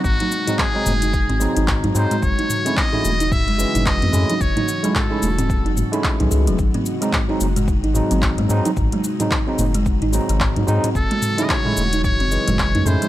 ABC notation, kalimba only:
X:1
M:4/4
L:1/16
Q:"Swing 16ths" 1/4=110
K:none
V:1 name="Kalimba"
^B, ^D z D2 ^G, z D z B,2 D z D2 G, | z ^D z ^B,2 D z D2 ^G, z D z B,2 D | z ^D2 ^G, z D z ^B,2 D z D z D ^G ^F, | z ^B,2 ^G,2 ^D2 G, z D z B,2 G,2 D- |
^D ^G, z D z ^B,2 G,2 D2 G, z D z B, | z ^G,2 ^D2 G, z D z ^B,2 G,2 D2 G, |]